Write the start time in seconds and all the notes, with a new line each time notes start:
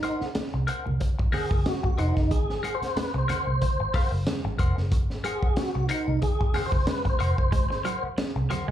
Already playing: D#4
0.03 A#4 C5 F#5, closed hi-hat, muted conga
0.21 muted fingered electric bass stroke, snare
0.35 muted fingered electric bass stroke, snare, closed hi-hat, high conga
0.54 C2, muted clean electric guitar stroke
0.67 A#4 C5 F#5, closed hi-hat, muted conga
0.86 C2, muted clean electric guitar stroke, low conga
1.00 muted clean electric guitar stroke, kick, closed hi-hat
1.19 G#1, muted clean electric guitar stroke, kick
1.32 G#4 A#4 C5 F#5, snare, open hi-hat, low conga
1.50 F#1, muted clean electric guitar stroke, kick
1.66 F#4, snare, closed hi-hat, high conga
1.83 G#1, muted clean electric guitar stroke, kick, high conga
1.98 F1 D#4 A#4 C5 F#5, closed hi-hat
2.16 F#1, muted clean electric guitar stroke, kick, snare
2.31 G#1 G#4, kick, closed hi-hat, muted conga
2.50 snare
2.63 A#4 C5 F#5, closed hi-hat, muted conga
2.75 C5
2.82 muted fingered electric bass stroke, snare, closed hi-hat
2.96 B4, muted fingered electric bass stroke, snare, closed hi-hat, high conga
3.14 C2 C5, muted clean electric guitar stroke
3.28 A#4 C5 F#5, snare, closed hi-hat, muted conga, low conga
3.47 C2, muted clean electric guitar stroke
3.61 muted clean electric guitar stroke, kick, closed hi-hat, low conga
3.79 G#1, muted clean electric guitar stroke
3.94 A#4 C5 F#5, kick, snare, open hi-hat
4.12 F#1, muted clean electric guitar stroke
4.27 snare, closed hi-hat, high conga
4.44 G#1, muted clean electric guitar stroke, high conga
4.58 F1 A#4 C5 F#5, kick, closed hi-hat
4.77 F#1, muted clean electric guitar stroke, snare
4.92 G#1, kick, closed hi-hat, muted conga
5.10 snare
5.24 G#4 A#4 C5 F#5, closed hi-hat, muted conga
5.43 muted fingered electric bass stroke, kick
5.56 F#4, muted fingered electric bass stroke, snare, closed hi-hat, high conga
5.75 C2, muted clean electric guitar stroke
5.89 D#4 A#4 C5 F#5, closed hi-hat, muted conga
6.08 C2, muted clean electric guitar stroke, low conga
6.22 G#4, muted clean electric guitar stroke, kick, closed hi-hat
6.41 G#1, muted clean electric guitar stroke, kick
6.54 A#4 C5 F#5, snare, open hi-hat, low conga
6.66 C5
6.72 F#1, muted clean electric guitar stroke, kick
6.87 B4, snare, closed hi-hat, high conga
7.05 G#1, muted clean electric guitar stroke, kick, closed hi-hat, high conga
7.09 C5
7.19 F1 A#4 C5 F#5, closed hi-hat
7.38 F#1, muted clean electric guitar stroke, kick
7.52 G#1 G#3, kick, closed hi-hat, muted conga
7.70 muted clean electric guitar stroke, snare
7.84 F#3 A#4 C5 F#5, closed hi-hat, muted conga
8.03 muted fingered electric bass stroke
8.18 muted fingered electric bass stroke, muted clean electric guitar stroke, snare, closed hi-hat, high conga
8.36 C2, muted clean electric guitar stroke
8.50 F#3 A#4 C5 F#5, snare, closed hi-hat, low conga
8.68 G#3, muted clean electric guitar stroke